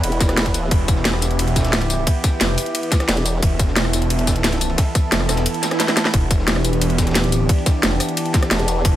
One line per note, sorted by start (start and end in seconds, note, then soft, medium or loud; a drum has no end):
0.00 0.19 E1 loud
0.00 8.96 E3 medium
0.00 8.96 B3 medium
0.00 6.10 E4 medium
0.00 0.70 B4 loud
0.00 closed hi-hat medium
0.00 ride medium
0.12 closed hi-hat soft
0.20 0.70 E1 medium
0.20 kick loud
0.20 snare soft
0.20 closed hi-hat medium
0.20 ride medium
0.20 tambourine medium
0.29 cross-stick medium
0.29 snare medium
0.29 closed hi-hat soft
0.37 snare loud
0.37 closed hi-hat medium
0.37 ride medium
0.37 tambourine soft
0.46 kick medium
0.46 closed hi-hat soft
0.54 closed hi-hat medium
0.54 ride medium
0.54 tambourine medium
0.71 1.68 E1 loud
0.71 3.41 G4 medium
0.71 kick loud
0.71 closed hi-hat medium
0.71 ride medium
0.88 kick loud
0.88 closed hi-hat medium
0.88 ride medium
0.88 tambourine medium
0.96 snare medium
1.05 snare loud
1.05 closed hi-hat medium
1.05 ride medium
1.14 cross-stick medium
1.14 snare medium
1.21 snare medium
1.21 closed hi-hat medium
1.21 ride medium
1.21 tambourine medium
1.31 closed hi-hat soft
1.39 closed hi-hat medium
1.39 ride medium
1.48 closed hi-hat soft
1.48 ride soft
1.56 kick medium
1.56 snare medium
1.56 closed hi-hat medium
1.56 ride medium
1.56 tambourine medium
1.61 snare medium
1.61 ride medium
1.64 snare medium
1.64 closed hi-hat soft
1.64 ride medium
1.68 2.06 D1 loud
1.68 snare medium
1.68 ride medium
1.73 snare loud
1.73 closed hi-hat medium
1.73 ride medium
1.73 tambourine soft
1.81 closed hi-hat soft
1.90 closed hi-hat medium
1.90 ride medium
1.90 tambourine medium
2.07 kick loud
2.07 closed hi-hat medium
2.07 ride medium
2.15 ride soft
2.24 kick loud
2.24 cross-stick soft
2.24 snare medium
2.24 closed hi-hat medium
2.24 ride medium
2.24 tambourine medium
2.41 2.56 F1 loud
2.41 snare loud
2.41 closed hi-hat loud
2.41 ride medium
2.57 open hi-hat medium
2.57 ride medium
2.57 tambourine medium
2.66 closed hi-hat soft
2.75 closed hi-hat medium
2.75 ride medium
2.83 closed hi-hat soft
2.92 kick loud
2.92 snare soft
2.92 closed hi-hat medium
2.92 ride medium
2.92 tambourine medium
3.00 cross-stick medium
3.00 snare medium
3.00 closed hi-hat soft
3.08 3.41 E1 loud
3.08 snare loud
3.08 closed hi-hat medium
3.08 ride medium
3.08 tambourine soft
3.17 closed hi-hat soft
3.25 closed hi-hat medium
3.25 ride medium
3.25 tambourine medium
3.42 4.39 E1 loud
3.42 6.13 A4 medium
3.42 kick loud
3.42 closed hi-hat loud
3.42 ride medium
3.59 kick loud
3.59 closed hi-hat medium
3.59 ride medium
3.59 tambourine medium
3.68 snare soft
3.76 snare loud
3.76 closed hi-hat loud
3.76 ride medium
3.85 cross-stick medium
3.85 snare medium
3.93 snare medium
3.93 closed hi-hat medium
3.93 ride medium
3.93 tambourine medium
4.02 closed hi-hat soft
4.10 closed hi-hat loud
4.10 ride medium
4.19 closed hi-hat soft
4.19 ride soft
4.27 kick medium
4.27 snare loud
4.27 closed hi-hat medium
4.27 ride medium
4.27 tambourine medium
4.36 4.77 D1 loud
4.36 closed hi-hat soft
4.44 snare loud
4.44 closed hi-hat loud
4.44 ride medium
4.44 tambourine soft
4.52 snare loud
4.52 closed hi-hat soft
4.52 ride medium
4.61 closed hi-hat medium
4.61 ride medium
4.61 tambourine medium
4.70 ride medium
4.78 kick loud
4.78 snare loud
4.78 closed hi-hat loud
4.78 ride medium
4.95 kick loud
4.95 cross-stick soft
4.95 closed hi-hat medium
4.95 ride medium
4.95 tambourine medium
5.12 5.28 F1 loud
5.12 snare loud
5.12 closed hi-hat loud
5.12 ride medium
5.12 ride loud
5.20 cross-stick medium
5.29 5.46 E1 medium
5.29 cross-stick medium
5.29 snare loud
5.29 open hi-hat medium
5.29 ride medium
5.29 tambourine medium
5.37 snare loud
5.37 closed hi-hat soft
5.37 ride medium
5.46 closed hi-hat loud
5.46 ride medium
5.46 swell medium
5.54 closed hi-hat soft
5.62 snare loud
5.62 snare soft
5.62 closed hi-hat medium
5.62 ride medium
5.62 tambourine medium
5.71 cross-stick medium
5.71 snare loud
5.71 closed hi-hat soft
5.71 ride medium
5.80 snare medium
5.80 snare loud
5.80 closed hi-hat loud
5.80 ride medium
5.80 tambourine soft
5.88 snare medium
5.88 snare loud
5.88 closed hi-hat soft
5.88 ride medium
5.88 tambourine soft
5.96 snare medium
5.96 closed hi-hat medium
5.96 ride medium
5.96 tambourine medium
6.05 snare medium
6.13 7.08 E1 loud
6.13 8.96 D4 medium
6.13 8.84 G4 loud
6.13 kick loud
6.13 closed hi-hat loud
6.13 ride medium
6.31 kick loud
6.31 closed hi-hat medium
6.31 ride medium
6.31 tambourine medium
6.39 snare medium
6.47 snare loud
6.47 closed hi-hat loud
6.47 ride loud
6.47 ride medium
6.55 cross-stick medium
6.55 snare medium
6.64 closed hi-hat medium
6.64 ride medium
6.64 tambourine medium
6.73 closed hi-hat soft
6.81 closed hi-hat loud
6.81 ride medium
6.89 closed hi-hat soft
6.89 ride soft
6.98 kick medium
6.98 snare medium
6.98 closed hi-hat medium
6.98 ride medium
6.98 tambourine medium
7.02 snare medium
7.02 ride medium
7.07 7.35 D#1 loud
7.07 snare medium
7.07 closed hi-hat soft
7.07 ride medium
7.11 snare medium
7.11 ride medium
7.15 snare loud
7.15 closed hi-hat loud
7.15 ride medium
7.15 tambourine soft
7.24 closed hi-hat soft
7.32 7.48 D1 loud
7.32 closed hi-hat medium
7.32 ride medium
7.32 tambourine medium
7.49 kick loud
7.49 closed hi-hat loud
7.49 ride medium
7.58 ride soft
7.66 kick loud
7.66 cross-stick soft
7.66 snare medium
7.66 closed hi-hat medium
7.66 ride medium
7.66 tambourine medium
7.83 7.99 F1 medium
7.83 snare loud
7.83 closed hi-hat loud
7.83 ride medium
8.00 cross-stick medium
8.00 open hi-hat medium
8.00 ride medium
8.00 tambourine medium
8.09 closed hi-hat soft
8.17 closed hi-hat loud
8.17 ride medium
8.26 closed hi-hat soft
8.34 kick loud
8.34 snare soft
8.34 closed hi-hat medium
8.34 ride medium
8.34 tambourine medium
8.43 cross-stick medium
8.43 snare medium
8.43 closed hi-hat soft
8.51 8.84 E1 loud
8.51 snare loud
8.51 closed hi-hat loud
8.51 ride medium
8.51 tambourine soft
8.59 closed hi-hat soft
8.68 closed hi-hat medium
8.68 ride medium
8.68 tambourine medium
8.85 8.96 E1 loud
8.85 8.96 B4 medium
8.85 kick loud
8.85 closed hi-hat medium
8.85 ride medium